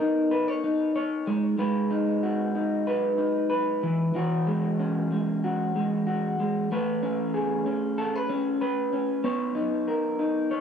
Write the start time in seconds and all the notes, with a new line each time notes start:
Already playing: B3 A#4 C#5
0.00 D#4
0.31 B4
0.48 C#5
0.64 D#4
0.96 C#5
1.27 G#3
1.58 G#3 B4
1.91 D#4
2.23 F#4
2.55 D#4
2.87 B4
3.18 D#4
3.50 B4
3.83 E3
4.15 E3 F#4
4.47 G#3
4.79 C#4
5.12 G#3
5.44 F#4
5.76 G#3
6.07 F#4
6.40 G#3
6.72 A3 B4
7.03 C#4
7.34 G#4
7.66 C#4
7.98 A4
8.15 B4
8.29 C#4
8.61 B4
8.93 C#4
9.24 B3 C#5
9.55 D#4
9.88 A#4
10.19 D#4
10.51 C#5